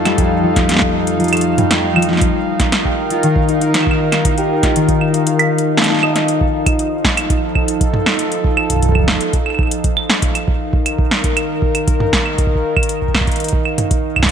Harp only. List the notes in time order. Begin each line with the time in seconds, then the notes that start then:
Already playing: F2 F3 A3 D#4
0.05 G3
0.18 F2
0.44 F3
0.56 F3
1.20 F3
1.33 A3
1.58 G3
1.71 F2
1.96 F3
2.09 F3
2.72 D#4
2.85 G4
3.10 F4
3.23 D#3
3.49 D#4
3.61 D#4
4.25 D#4
4.38 G4
4.63 F4
4.76 D#3
5.01 D#4
5.14 D#4
5.77 A4
5.90 D#4
6.03 D#5
6.16 D#5